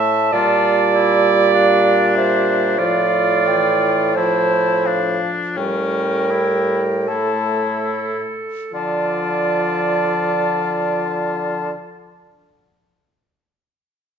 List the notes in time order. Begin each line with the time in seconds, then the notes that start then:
Already playing: A2 E5 A5
0.32 A#2 G3 F4 D5
0.95 E4
1.53 D4 F5
2.16 C5 E5
2.78 A2 F3 F4 D5 F5
3.46 E3 G5
4.15 F3 E4 C5 A5
4.86 D4 F5
5.56 A2 G3 C#4 A#4 G5
6.31 E4
7.08 A3 E4 A4 A5
8.72 D3 F3 F4 D5 A5